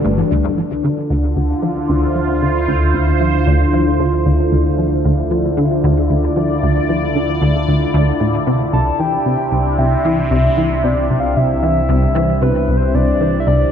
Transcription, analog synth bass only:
0.05 0.23 G1 loud
0.31 0.49 D2 loud
0.57 0.75 F3 medium
0.84 0.94 D3 medium
1.10 1.35 D2 medium
1.36 1.54 D2 medium
1.62 1.80 F3 medium
1.89 2.07 D2 loud
2.15 2.33 F3 medium
2.42 2.52 D3 medium
2.68 2.93 D2 medium
2.94 3.12 D2 medium
3.20 3.38 F3 medium
3.47 3.65 D2 loud
3.73 3.91 F3 medium
3.99 4.10 D3 medium
4.26 4.51 D2 loud
4.52 4.70 D2 medium
4.78 4.96 F3 medium
5.05 5.23 D2 loud
5.31 5.49 F3 medium
5.57 5.68 D3 medium
5.84 6.09 D2 loud
6.10 6.28 D2 medium
6.36 6.54 F3 medium
6.63 6.80 D2 loud
6.89 7.07 F3 medium
7.15 7.26 D3 medium
7.41 7.67 D2 medium
7.68 7.86 D2 medium
7.94 8.12 D2 loud
8.20 8.38 A2 medium
8.47 8.65 C3 loud
8.73 8.91 C2 loud
8.99 9.17 E3 medium
9.26 9.37 C3 medium
9.52 9.77 C2 medium
9.78 9.96 C2 medium
10.05 10.23 E3 medium
10.31 10.49 C2 loud
10.57 10.75 E3 medium
10.84 10.94 C3 medium
11.10 11.35 C2 medium
11.36 11.54 C2 medium
11.63 11.81 E3 medium
11.89 12.07 C2 loud
12.15 12.33 E3 medium
12.42 12.52 C3 medium
12.68 12.93 C2 medium
12.94 13.12 C2 medium
13.21 13.38 E3 medium
13.47 13.65 C2 medium

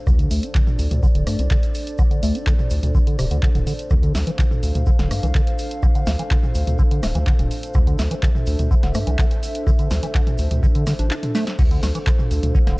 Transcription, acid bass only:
0.07 0.11 D3 loud
0.19 0.29 D3 medium
0.31 0.44 A3 medium
0.43 0.50 D4 medium
0.55 0.62 D3 medium
1.03 1.07 D3 loud
1.15 1.25 D3 medium
1.27 1.40 A3 medium
1.39 1.46 D4 loud
1.51 1.58 D3 medium
1.99 2.03 D3 loud
2.11 2.21 D3 medium
2.23 2.36 A3 medium
2.35 2.42 D4 loud
2.47 2.54 D3 medium
2.95 2.99 D3 loud
3.07 3.17 D3 medium
3.19 3.26 C3 medium
3.31 3.38 D3 medium
3.43 3.50 D3 medium
3.55 3.59 D3 medium
3.67 3.74 D3 medium
3.91 3.95 D3 loud
4.03 4.13 D3 medium
4.15 4.19 A3 medium
4.27 4.31 E3 medium
4.39 4.46 D3 medium
4.87 4.91 D3 loud
4.99 5.09 D3 medium
5.11 5.15 A3 medium
5.23 5.27 E3 medium
5.35 5.42 D3 medium
5.83 5.87 D3 loud
5.95 6.05 D3 medium
6.07 6.11 A3 medium
6.19 6.23 E3 medium
6.31 6.38 D3 medium
6.79 6.83 D3 loud
6.91 7.01 D3 medium
7.03 7.07 A3 medium
7.15 7.19 E3 medium
7.27 7.34 D3 medium
7.75 7.79 D3 loud
7.87 7.97 D3 medium
7.99 8.03 A3 medium
8.11 8.15 E3 medium
8.23 8.30 D3 medium
8.71 8.75 D3 loud
8.83 8.93 D3 medium
8.95 8.99 A3 medium
9.07 9.11 E3 medium
9.19 9.26 D3 medium
9.67 9.71 D3 loud
9.79 9.89 D3 medium
9.91 9.95 A3 medium
10.03 10.07 E3 medium
10.15 10.22 D3 medium
10.63 10.67 D3 loud
10.75 10.85 D3 medium
10.87 10.94 D3 medium
10.99 11.09 D4 medium
11.11 11.15 D4 loud
11.35 11.45 A3 loud
11.59 11.63 D3 loud
11.71 11.81 D3 medium
11.83 11.87 A3 medium
11.95 11.99 E3 medium
12.07 12.11 D3 medium
12.55 12.59 D3 loud
12.67 12.77 D3 medium

